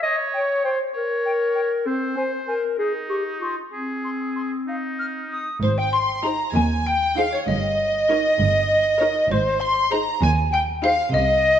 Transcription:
0.03 oboe C#5, clarinet D#5
0.34 clarinet C#5, flute G5
0.64 clarinet C5, flute G5
0.94 clarinet A#4, oboe C#5
1.26 flute G5
1.55 flute G5
1.86 clarinet C4, oboe C5
2.17 clarinet C5, flute G#5
2.48 clarinet A#4, flute G#5
2.78 oboe D#4, clarinet G#4
3.09 clarinet G4, flute C#6
3.41 clarinet F4, flute C#6
3.72 clarinet C4, oboe G#4
4.04 flute C6
4.36 flute C6
4.67 oboe D#4, flute F5
4.99 flute F6
5.30 flute D#6
5.62 double bass section G#1, cello section G#2, xylophone C5, flute C5, violin section C5
5.78 xylophone G5, violin section G5, flute G5
5.93 flute C6, xylophone C6, violin section C6
6.24 viola section D#4 G#4, violin section C5 A#5, xylophone A#5, flute A#5
6.55 cello section D#2, double bass section D#2, violin section G#5, flute G#5, xylophone G#5
6.86 flute G5, xylophone G5, violin section G5
7.16 viola section D#4 G#4, violin section C5 F5, flute F5, xylophone F5
7.33 xylophone C#5, flute C#5, violin section C#5
7.48 double bass section G1, cello section G2, flute D#5, xylophone D#5, violin section D#5
8.09 viola section D#4 A#4, violin section C#5
8.39 double bass section G1, cello section G2
9.00 viola section D#4 A#4, violin section C#5
9.30 double bass section G#1, cello section G#2, violin section C5, xylophone C5, flute C5
9.60 flute C6, xylophone C6, violin section C6
9.91 viola section D#4 G#4, violin section C5 A#5, flute A#5, xylophone A#5
10.21 double bass section D#2, cello section D#2, flute G#5, violin section G#5, xylophone G#5
10.52 flute G5, violin section G5, xylophone G5
10.83 viola section D#4 G#4, violin section C5 F5, flute F5, xylophone F5
11.12 double bass section C2, cello section C3, flute D#5, violin section D#5, xylophone D#5

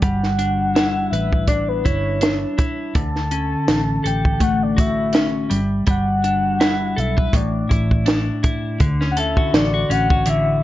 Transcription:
Already playing: clean electric guitar D3
0.02 fingered electric bass G1, clean electric guitar G3, soft synth lead F#5, kick, closed hi-hat
0.23 snare
0.39 clean electric guitar D4, closed hi-hat
0.75 clean electric guitar E4, snare, closed hi-hat
1.11 fingered electric bass A1, clean electric guitar B4, soft synth lead E5, closed hi-hat
1.33 kick
1.48 clean electric guitar D4, soft synth lead D5, kick, closed hi-hat
1.68 soft synth lead B4
1.85 fingered electric bass G1, clean electric guitar E4, soft synth lead C#5, kick, closed hi-hat
2.21 clean electric guitar D4, snare, closed hi-hat
2.58 clean electric guitar E4, kick, closed hi-hat
2.95 fingered electric bass D2, clean electric guitar D3, soft synth lead A5, kick, closed hi-hat
3.16 snare
3.31 clean electric guitar C#4, closed hi-hat
3.68 fingered electric bass A1, snare, closed hi-hat
4.04 fingered electric bass A1, clean electric guitar A4, soft synth lead G5, closed hi-hat
4.25 kick
4.40 clean electric guitar A3, soft synth lead F#5, kick, closed hi-hat
4.63 soft synth lead D5
4.76 clean electric guitar F#4, soft synth lead E5, kick, closed hi-hat
5.13 clean electric guitar C#4, snare, closed hi-hat
5.50 fingered electric bass G1, clean electric guitar G3, closed hi-hat
5.87 fingered electric bass G1, clean electric guitar G3, soft synth lead F#5, kick, closed hi-hat
6.24 clean electric guitar D4, closed hi-hat
6.60 clean electric guitar E4, snare, closed hi-hat
6.96 fingered electric bass B1, clean electric guitar A4, soft synth lead E5, closed hi-hat
7.17 clean electric guitar B4, kick
7.33 fingered electric bass A1, clean electric guitar A2, soft synth lead D5, kick, closed hi-hat
7.69 fingered electric bass A1, clean electric guitar E4, kick, closed hi-hat
7.91 kick
8.06 clean electric guitar D4, snare, closed hi-hat
8.43 clean electric guitar E4, kick, closed hi-hat
8.80 fingered electric bass D2, clean electric guitar D3, kick, closed hi-hat
9.01 clean electric guitar C#4, snare
9.11 soft synth lead F#5
9.17 clean electric guitar A4, soft synth lead E5, closed hi-hat
9.37 clean electric guitar F#4, kick
9.54 fingered electric bass A1, soft synth lead D5, snare, closed hi-hat
9.74 clean electric guitar F#4
9.90 fingered electric bass A1, clean electric guitar C#4, soft synth lead F#5, closed hi-hat
10.10 clean electric guitar F#4, kick
10.26 clean electric guitar D3, soft synth lead E5, closed hi-hat

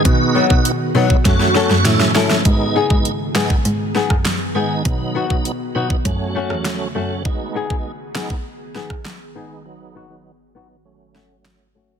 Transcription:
Already playing: ambient pad D#3 B3
0.05 cello B2, tonewheel organ B3 D#4 F#4, ambient pad F#4, kick, closed hi-hat
0.35 nylon-string guitar F#3 B3 D#4
0.50 cello B2, tonewheel organ B3 D#4 F#4, kick
0.65 closed hi-hat
0.95 cello B2, nylon-string guitar F#3 B3 D#4, tonewheel organ B3 D#4 F#4
1.10 muted nylon-string guitar stroke, kick
1.25 cello F#2, ambient pad C#3, tonewheel organ A3 C#4 F#4, kick, snare, closed hi-hat
1.40 snare
1.55 nylon-string guitar C#4 F#4 A4, snare
1.70 cello F#2, snare
1.85 cello A2, tonewheel organ A3 C#4 E4, snare, closed hi-hat
2.00 snare
2.15 cello G#2, tonewheel organ A3 C#4 E4, nylon-string guitar C#4 E4 A4, snare
2.30 snare
2.45 cello G#2, ambient pad D#3 B3 G#4, tonewheel organ G#3 B3 D#4, kick, closed hi-hat
2.75 nylon-string guitar B3 D#4 G#4
2.90 cello G#2, tonewheel organ G#3 B3 D#4, kick
3.05 closed hi-hat
3.35 cello G#2, tonewheel organ G#3 B3 D#4, nylon-string guitar B3 D#4 G#4, snare, clap
3.50 muted nylon-string guitar stroke, kick
3.65 cello G#2, closed hi-hat
3.95 nylon-string guitar B3 D#4 G#4, snare
4.10 cello F#2, kick, cross-stick
4.25 snare, clap, closed hi-hat
4.55 cello G#2, tonewheel organ G#3 B3 D#4, nylon-string guitar B3 D#4 G#4
4.85 cello B2, tonewheel organ F#3 B3 D#4, ambient pad F#4, kick, closed hi-hat
5.15 nylon-string guitar B3 D#4 F#4
5.30 cello B2, tonewheel organ F#3 B3 D#4, kick
5.45 closed hi-hat
5.75 cello B2, tonewheel organ F#3 B3 D#4, nylon-string guitar B3 D#4 F#4
5.90 muted nylon-string guitar stroke, kick
6.05 cello F#2, ambient pad C#3 A3, tonewheel organ F#3 A3 C#4, kick, closed hi-hat
6.35 nylon-string guitar A3 C#4 F#4
6.50 cello E2, cross-stick
6.65 snare, clap, closed hi-hat
6.95 cello F#2, tonewheel organ F#3 A3 C#4, nylon-string guitar A3 C#4 F#4
7.25 ambient pad D#3 B3 G#4, tonewheel organ G#3 B3 D#4, kick
7.55 nylon-string guitar B3 D#4 G#4
7.70 tonewheel organ G#3 B3 D#4, kick
8.15 tonewheel organ G#3 B3 D#4, nylon-string guitar B3 D#4 G#4, snare, clap
8.30 muted nylon-string guitar stroke, kick
8.75 nylon-string guitar B3 D#4 G#4, snare
8.90 kick, cross-stick
9.05 snare, clap
9.35 tonewheel organ G#3 B3 D#4, nylon-string guitar B3 D#4 G#4
9.65 tonewheel organ F#3 B3 D#4, ambient pad B3 F#4
9.95 nylon-string guitar B3 D#4 F#4
10.10 tonewheel organ F#3 B3 D#4
10.55 tonewheel organ F#3 B3 D#4, nylon-string guitar B3 D#4 F#4
10.70 muted nylon-string guitar stroke
10.85 ambient pad C#3 A3, tonewheel organ F#3 A3 C#4
11.15 nylon-string guitar A3 C#4 F#4, snare
11.45 snare, clap
11.75 tonewheel organ F#3 A3 C#4, nylon-string guitar A3 C#4 F#4

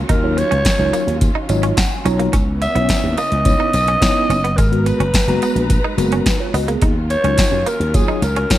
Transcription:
Already playing: string section D#3 F#3 C#4 F4
0.09 slap bass D#2, clean electric guitar D#4, alto saxophone A#4, kick, closed hi-hat, tambourine
0.23 tine electric piano F#3 D#4 F4 C#5
0.37 alto saxophone C#5, muted clean electric guitar stroke, closed hi-hat, tambourine
0.51 slap bass C#2, clean electric guitar C#4, closed hi-hat
0.65 kick, snare, closed hi-hat, tambourine
0.79 slap bass C#2, tine electric piano F#3 D#4 F4 C#5
0.93 clean electric guitar A#3, closed hi-hat, tambourine
1.07 slap bass D#2, closed hi-hat
1.21 kick, closed hi-hat, tambourine
1.35 clean electric guitar D#4
1.49 slap bass G#1, tine electric piano F#3 D#4 F4 C#5 D#5, muted clean electric guitar stroke, closed hi-hat, tambourine
1.63 clean electric guitar C#4, closed hi-hat
1.77 tine electric piano F#5, muted clean electric guitar stroke, kick, snare, closed hi-hat, tambourine
1.91 tine electric piano G#5
2.05 slap bass B1, tine electric piano F#3 D#4 F4 C#5 A#5, clean electric guitar C#4, closed hi-hat, tambourine
2.19 clean electric guitar A#3, closed hi-hat
2.33 slap bass C#2, string section C#3 E3 B3 C#4, clean electric guitar C#4, kick, closed hi-hat, tambourine
2.62 alto saxophone E5, muted clean electric guitar stroke, closed hi-hat, tambourine
2.75 slap bass B1, tine electric piano B3 C#4 E4 C#5, clean electric guitar B3, closed hi-hat
2.89 kick, snare, closed hi-hat, tambourine
3.04 slap bass D#2
3.18 clean electric guitar A#3, alto saxophone D#5, closed hi-hat, tambourine
3.32 slap bass C#2, closed hi-hat
3.45 tine electric piano B3 D#4 E4 C#5, kick, closed hi-hat, tambourine
3.60 clean electric guitar D#4
3.73 slap bass B1, muted clean electric guitar stroke, closed hi-hat, tambourine
3.88 clean electric guitar C#4, closed hi-hat
4.01 tine electric piano B3 D#4 E4 C#5, muted clean electric guitar stroke, kick, snare, closed hi-hat, tambourine
4.29 slap bass F#1, clean electric guitar C#4, closed hi-hat, tambourine
4.44 clean electric guitar B3, closed hi-hat
4.57 slap bass G#1, string section F#3 G#3 B4 A#5, clean electric guitar G#3, alto saxophone A#4, kick, closed hi-hat, tambourine
4.71 tine electric piano G#3 B3 F#4 A#4, closed hi-hat
4.86 alto saxophone B4, muted clean electric guitar stroke, closed hi-hat, tambourine
5.00 slap bass F#1, clean electric guitar C#4, closed hi-hat
5.14 kick, snare, closed hi-hat, tambourine
5.27 slap bass F#1, tine electric piano G#3 B3 F#4 A#5, closed hi-hat
5.42 clean electric guitar B3, closed hi-hat, tambourine
5.55 slap bass A#1, closed hi-hat
5.70 kick, closed hi-hat, tambourine
5.84 clean electric guitar D#4
5.97 slap bass F#1, tine electric piano G#3 B3 F#4 A#4, muted clean electric guitar stroke, closed hi-hat, tambourine
6.12 clean electric guitar C#4, closed hi-hat
6.26 tine electric piano D#4 B4, muted clean electric guitar stroke, kick, snare, closed hi-hat, tambourine
6.40 tine electric piano F4 C#5
6.54 slap bass C#2, clean electric guitar B3, tine electric piano F#4 D#5, open hi-hat, tambourine
6.68 clean electric guitar A#3, tine electric piano B3 G#4, closed hi-hat
6.82 slap bass D#2, string section D#3 C#4 F4, clean electric guitar D#4, kick, closed hi-hat
7.10 alto saxophone C#5, muted clean electric guitar stroke, closed hi-hat, tambourine
7.23 slap bass C#2, tine electric piano F#3 D#4 F4 C#5, clean electric guitar C#4, closed hi-hat
7.38 kick, snare, closed hi-hat, tambourine
7.52 slap bass F#2
7.66 clean electric guitar A#3, alto saxophone A#4, closed hi-hat, tambourine
7.80 slap bass D#2, closed hi-hat
7.94 tine electric piano F#3 D#4 F4 C#5, alto saxophone G#4, kick, closed hi-hat, tambourine
8.08 clean electric guitar D#4
8.22 slap bass C#2, alto saxophone A#4, muted clean electric guitar stroke, closed hi-hat, tambourine
8.36 clean electric guitar C#4, closed hi-hat
8.50 tine electric piano F#3 D#4 F4 C#5, muted clean electric guitar stroke, kick, snare, closed hi-hat, tambourine

